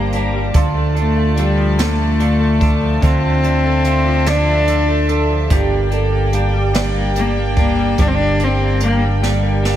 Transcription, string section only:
0, 0, Header, 1, 2, 480
1, 0, Start_track
1, 0, Key_signature, -1, "minor"
1, 0, Tempo, 827586
1, 314, Time_signature, 6, 3, 24, 8
1, 5663, End_track
2, 0, Start_track
2, 0, Title_t, "String section"
2, 0, Program_c, 0, 48
2, 0, Note_on_c, 0, 67, 71
2, 0, Note_on_c, 0, 72, 63
2, 0, Note_on_c, 0, 82, 75
2, 291, Note_off_c, 0, 67, 0
2, 293, Note_off_c, 0, 82, 0
2, 299, Note_off_c, 0, 72, 0
2, 315, Note_on_c, 0, 81, 71
2, 318, Note_on_c, 0, 65, 60
2, 319, Note_on_c, 0, 74, 62
2, 1742, Note_off_c, 0, 74, 0
2, 1766, Note_on_c, 0, 76, 68
2, 3171, Note_off_c, 0, 81, 0
2, 3172, Note_off_c, 0, 65, 0
2, 3185, Note_off_c, 0, 76, 0
2, 3197, Note_on_c, 0, 67, 74
2, 3199, Note_on_c, 0, 74, 67
2, 3201, Note_on_c, 0, 79, 89
2, 5663, Note_off_c, 0, 67, 0
2, 5663, Note_off_c, 0, 74, 0
2, 5663, Note_off_c, 0, 79, 0
2, 5663, End_track
0, 0, End_of_file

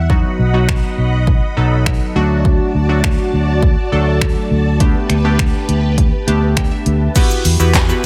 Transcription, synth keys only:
0, 0, Header, 1, 2, 480
1, 0, Start_track
1, 0, Key_signature, 1, "minor"
1, 0, Tempo, 588235
1, 79, Time_signature, 4, 2, 24, 8
1, 6576, End_track
2, 0, Start_track
2, 0, Title_t, "Synth keys"
2, 0, Program_c, 0, 88
2, 77, Note_on_c, 0, 54, 85
2, 78, Note_on_c, 0, 59, 80
2, 80, Note_on_c, 0, 63, 77
2, 81, Note_on_c, 0, 66, 94
2, 326, Note_off_c, 0, 54, 0
2, 326, Note_off_c, 0, 59, 0
2, 327, Note_off_c, 0, 63, 0
2, 328, Note_off_c, 0, 66, 0
2, 436, Note_on_c, 0, 54, 82
2, 437, Note_on_c, 0, 59, 76
2, 439, Note_on_c, 0, 63, 78
2, 441, Note_on_c, 0, 66, 86
2, 1016, Note_off_c, 0, 54, 0
2, 1016, Note_off_c, 0, 59, 0
2, 1017, Note_off_c, 0, 63, 0
2, 1018, Note_off_c, 0, 66, 0
2, 1278, Note_on_c, 0, 54, 88
2, 1280, Note_on_c, 0, 59, 75
2, 1280, Note_on_c, 0, 63, 80
2, 1282, Note_on_c, 0, 69, 91
2, 1748, Note_off_c, 0, 54, 0
2, 1758, Note_on_c, 0, 54, 95
2, 1759, Note_off_c, 0, 59, 0
2, 1759, Note_on_c, 0, 57, 85
2, 1760, Note_off_c, 0, 63, 0
2, 1761, Note_off_c, 0, 69, 0
2, 1761, Note_on_c, 0, 62, 88
2, 1762, Note_on_c, 0, 66, 104
2, 2239, Note_off_c, 0, 54, 0
2, 2239, Note_off_c, 0, 57, 0
2, 2240, Note_off_c, 0, 62, 0
2, 2241, Note_off_c, 0, 66, 0
2, 2358, Note_on_c, 0, 54, 81
2, 2358, Note_on_c, 0, 57, 79
2, 2360, Note_on_c, 0, 62, 78
2, 2362, Note_on_c, 0, 66, 93
2, 2936, Note_off_c, 0, 54, 0
2, 2937, Note_off_c, 0, 57, 0
2, 2938, Note_off_c, 0, 62, 0
2, 2938, Note_off_c, 0, 66, 0
2, 3198, Note_on_c, 0, 54, 82
2, 3199, Note_on_c, 0, 57, 77
2, 3201, Note_on_c, 0, 62, 80
2, 3203, Note_on_c, 0, 69, 97
2, 3694, Note_off_c, 0, 54, 0
2, 3694, Note_off_c, 0, 57, 0
2, 3695, Note_off_c, 0, 62, 0
2, 3696, Note_off_c, 0, 69, 0
2, 3919, Note_on_c, 0, 57, 89
2, 3920, Note_on_c, 0, 59, 78
2, 3921, Note_on_c, 0, 62, 81
2, 3923, Note_on_c, 0, 67, 93
2, 4167, Note_off_c, 0, 57, 0
2, 4167, Note_off_c, 0, 59, 0
2, 4168, Note_off_c, 0, 62, 0
2, 4169, Note_off_c, 0, 67, 0
2, 4280, Note_on_c, 0, 57, 82
2, 4282, Note_on_c, 0, 59, 76
2, 4282, Note_on_c, 0, 62, 80
2, 4284, Note_on_c, 0, 67, 94
2, 4857, Note_off_c, 0, 57, 0
2, 4858, Note_off_c, 0, 59, 0
2, 4859, Note_off_c, 0, 62, 0
2, 4859, Note_off_c, 0, 67, 0
2, 5118, Note_on_c, 0, 57, 87
2, 5120, Note_on_c, 0, 59, 74
2, 5121, Note_on_c, 0, 62, 79
2, 5121, Note_on_c, 0, 81, 71
2, 5123, Note_on_c, 0, 67, 97
2, 5343, Note_off_c, 0, 81, 0
2, 5359, Note_on_c, 0, 79, 77
2, 5471, Note_off_c, 0, 79, 0
2, 5479, Note_on_c, 0, 76, 71
2, 5614, Note_off_c, 0, 57, 0
2, 5615, Note_off_c, 0, 59, 0
2, 5616, Note_off_c, 0, 62, 0
2, 5616, Note_off_c, 0, 67, 0
2, 5814, Note_off_c, 0, 76, 0
2, 5837, Note_on_c, 0, 59, 89
2, 5838, Note_on_c, 0, 64, 81
2, 5839, Note_on_c, 0, 66, 79
2, 5840, Note_on_c, 0, 67, 85
2, 5842, Note_on_c, 0, 71, 95
2, 6086, Note_off_c, 0, 59, 0
2, 6087, Note_off_c, 0, 64, 0
2, 6087, Note_off_c, 0, 66, 0
2, 6087, Note_off_c, 0, 67, 0
2, 6088, Note_off_c, 0, 71, 0
2, 6198, Note_on_c, 0, 59, 85
2, 6199, Note_on_c, 0, 64, 78
2, 6200, Note_on_c, 0, 66, 78
2, 6201, Note_on_c, 0, 67, 78
2, 6203, Note_on_c, 0, 71, 94
2, 6364, Note_off_c, 0, 59, 0
2, 6364, Note_off_c, 0, 64, 0
2, 6365, Note_off_c, 0, 66, 0
2, 6365, Note_off_c, 0, 67, 0
2, 6366, Note_off_c, 0, 71, 0
2, 6438, Note_on_c, 0, 59, 85
2, 6439, Note_on_c, 0, 64, 80
2, 6439, Note_on_c, 0, 66, 78
2, 6441, Note_on_c, 0, 67, 78
2, 6442, Note_on_c, 0, 71, 99
2, 6576, Note_off_c, 0, 59, 0
2, 6576, Note_off_c, 0, 64, 0
2, 6576, Note_off_c, 0, 66, 0
2, 6576, Note_off_c, 0, 67, 0
2, 6576, Note_off_c, 0, 71, 0
2, 6576, End_track
0, 0, End_of_file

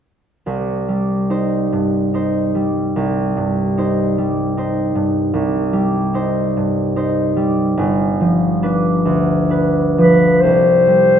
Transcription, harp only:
0, 0, Header, 1, 2, 480
1, 0, Start_track
1, 0, Key_signature, -3, "minor"
1, 0, Tempo, 839161
1, 260, Time_signature, 3, 2, 24, 8
1, 1697, Tempo, 803213
1, 2657, Tempo, 766284
1, 3137, Tempo, 814111
1, 4577, Tempo, 854701
1, 5537, Tempo, 936037
1, 6017, Tempo, 859599
1, 6446, End_track
2, 0, Start_track
2, 0, Title_t, "Harp"
2, 0, Program_c, 0, 46
2, 264, Note_on_c, 0, 36, 36
2, 506, Note_on_c, 0, 55, 26
2, 743, Note_on_c, 0, 63, 28
2, 747, Note_on_c, 0, 72, 31
2, 986, Note_on_c, 0, 43, 30
2, 1216, Note_off_c, 0, 63, 0
2, 1221, Note_off_c, 0, 72, 0
2, 1223, Note_on_c, 0, 63, 28
2, 1228, Note_on_c, 0, 72, 31
2, 1450, Note_off_c, 0, 55, 0
2, 1457, Note_on_c, 0, 55, 31
2, 1686, Note_off_c, 0, 36, 0
2, 1693, Note_on_c, 0, 36, 37
2, 1929, Note_off_c, 0, 43, 0
2, 1937, Note_on_c, 0, 43, 30
2, 2176, Note_off_c, 0, 63, 0
2, 2176, Note_off_c, 0, 72, 0
2, 2181, Note_on_c, 0, 63, 29
2, 2186, Note_on_c, 0, 72, 34
2, 2414, Note_off_c, 0, 55, 0
2, 2422, Note_on_c, 0, 55, 32
2, 2651, Note_off_c, 0, 63, 0
2, 2653, Note_off_c, 0, 72, 0
2, 2656, Note_on_c, 0, 63, 32
2, 2662, Note_on_c, 0, 72, 34
2, 2887, Note_off_c, 0, 43, 0
2, 2894, Note_on_c, 0, 43, 37
2, 3127, Note_off_c, 0, 36, 0
2, 3135, Note_on_c, 0, 36, 42
2, 3155, Note_off_c, 0, 43, 0
2, 3359, Note_off_c, 0, 55, 0
2, 3366, Note_on_c, 0, 55, 36
2, 3604, Note_off_c, 0, 63, 0
2, 3606, Note_off_c, 0, 72, 0
2, 3609, Note_on_c, 0, 63, 30
2, 3615, Note_on_c, 0, 72, 40
2, 3861, Note_on_c, 0, 43, 35
2, 4086, Note_off_c, 0, 63, 0
2, 4090, Note_off_c, 0, 72, 0
2, 4093, Note_on_c, 0, 63, 36
2, 4097, Note_on_c, 0, 72, 41
2, 4324, Note_off_c, 0, 55, 0
2, 4331, Note_on_c, 0, 55, 36
2, 4572, Note_on_c, 0, 31, 46
2, 4594, Note_off_c, 0, 63, 0
2, 4595, Note_off_c, 0, 36, 0
2, 4596, Note_off_c, 0, 72, 0
2, 4598, Note_off_c, 0, 43, 0
2, 4814, Note_on_c, 0, 53, 38
2, 5051, Note_on_c, 0, 62, 37
2, 5054, Note_on_c, 0, 71, 36
2, 5291, Note_on_c, 0, 38, 35
2, 5532, Note_off_c, 0, 62, 0
2, 5538, Note_on_c, 0, 62, 29
2, 5540, Note_off_c, 0, 71, 0
2, 5546, Note_on_c, 0, 71, 37
2, 5783, Note_off_c, 0, 53, 0
2, 5789, Note_on_c, 0, 53, 31
2, 6021, Note_on_c, 0, 36, 37
2, 6034, Note_off_c, 0, 31, 0
2, 6037, Note_off_c, 0, 62, 0
2, 6038, Note_off_c, 0, 38, 0
2, 6041, Note_off_c, 0, 53, 0
2, 6041, Note_off_c, 0, 71, 0
2, 6257, Note_off_c, 0, 55, 0
2, 6264, Note_on_c, 0, 55, 30
2, 6446, Note_off_c, 0, 36, 0
2, 6446, Note_off_c, 0, 55, 0
2, 6446, End_track
0, 0, End_of_file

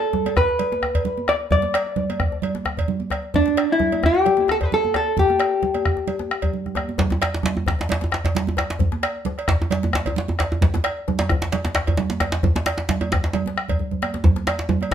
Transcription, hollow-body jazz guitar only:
0, 0, Header, 1, 2, 480
1, 0, Start_track
1, 0, Key_signature, 1, "major"
1, 0, Tempo, 457666
1, 1578, Time_signature, 4, 2, 24, 8
1, 7812, Tempo, 452830
1, 15756, End_track
2, 0, Start_track
2, 0, Title_t, "Hollow-body jazz guitar"
2, 0, Program_c, 0, 26
2, 0, Note_on_c, 0, 69, 73
2, 387, Note_off_c, 0, 69, 0
2, 391, Note_on_c, 0, 71, 85
2, 1348, Note_off_c, 0, 71, 0
2, 1352, Note_on_c, 0, 74, 90
2, 1415, Note_off_c, 0, 74, 0
2, 1594, Note_on_c, 0, 74, 87
2, 2507, Note_off_c, 0, 74, 0
2, 3520, Note_on_c, 0, 62, 82
2, 3854, Note_off_c, 0, 62, 0
2, 3905, Note_on_c, 0, 64, 74
2, 4250, Note_off_c, 0, 64, 0
2, 4256, Note_on_c, 0, 67, 87
2, 4731, Note_off_c, 0, 67, 0
2, 4735, Note_on_c, 0, 69, 101
2, 4785, Note_off_c, 0, 69, 0
2, 4859, Note_on_c, 0, 71, 91
2, 4957, Note_off_c, 0, 71, 0
2, 4969, Note_on_c, 0, 69, 95
2, 5191, Note_off_c, 0, 69, 0
2, 5204, Note_on_c, 0, 69, 86
2, 5416, Note_off_c, 0, 69, 0
2, 5445, Note_on_c, 0, 67, 87
2, 6827, Note_off_c, 0, 67, 0
2, 15756, End_track
0, 0, End_of_file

